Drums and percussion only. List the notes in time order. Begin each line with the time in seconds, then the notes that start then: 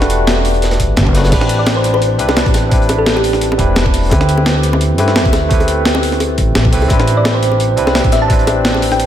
0.01 snare, closed hi-hat
0.10 closed hi-hat
0.27 snare, closed hi-hat
0.37 snare
0.45 closed hi-hat, open hi-hat
0.54 closed hi-hat
0.62 snare, closed hi-hat
0.71 snare, closed hi-hat
0.80 kick, closed hi-hat
0.97 snare, closed hi-hat
1.07 kick
1.14 snare, closed hi-hat
1.24 snare, closed hi-hat
1.32 kick, closed hi-hat, crash, high bongo
1.41 snare
1.49 closed hi-hat
1.66 snare, closed hi-hat, high bongo
1.84 snare, closed hi-hat
1.94 high bongo
2.02 closed hi-hat
2.19 closed hi-hat
2.29 snare, high bongo
2.36 snare, closed hi-hat
2.46 kick, closed hi-hat
2.54 snare, closed hi-hat, high bongo
2.56 closed hi-hat
2.71 kick, closed hi-hat
2.82 closed hi-hat
2.89 closed hi-hat, high bongo
3.06 snare, closed hi-hat
3.16 snare, high bongo
3.24 closed hi-hat, open hi-hat
3.33 snare, closed hi-hat
3.41 closed hi-hat
3.52 high bongo
3.59 kick, closed hi-hat
3.76 snare, closed hi-hat, high bongo
3.86 kick
3.94 closed hi-hat, open hi-hat
4.11 kick, closed hi-hat, high bongo
4.21 snare
4.29 closed hi-hat
4.37 high bongo
4.46 snare, closed hi-hat
4.63 snare, closed hi-hat
4.73 high bongo
4.81 closed hi-hat
4.98 closed hi-hat, high bongo
5.08 snare
5.16 snare, closed hi-hat
5.25 kick, closed hi-hat
5.33 snare, closed hi-hat, high bongo
5.51 kick, closed hi-hat
5.60 closed hi-hat, high bongo
5.68 closed hi-hat
5.85 snare, closed hi-hat
5.95 snare, high bongo
6.03 closed hi-hat, open hi-hat
6.12 snare, closed hi-hat
6.20 closed hi-hat, high bongo
6.38 kick, closed hi-hat
6.55 snare, closed hi-hat, high bongo
6.65 kick
6.73 closed hi-hat, open hi-hat
6.82 high bongo
6.90 kick, closed hi-hat, high bongo
7.00 snare
7.08 closed hi-hat
7.25 snare, closed hi-hat, high bongo
7.42 snare, closed hi-hat
7.52 high bongo
7.60 closed hi-hat
7.77 closed hi-hat
7.87 snare, high bongo
7.95 snare, closed hi-hat
8.04 kick, closed hi-hat
8.12 snare, closed hi-hat, high bongo
8.30 kick, closed hi-hat
8.39 closed hi-hat
8.47 closed hi-hat, high bongo
8.65 snare, closed hi-hat
8.74 snare, high bongo
8.82 closed hi-hat, open hi-hat
8.91 snare, closed hi-hat
8.99 closed hi-hat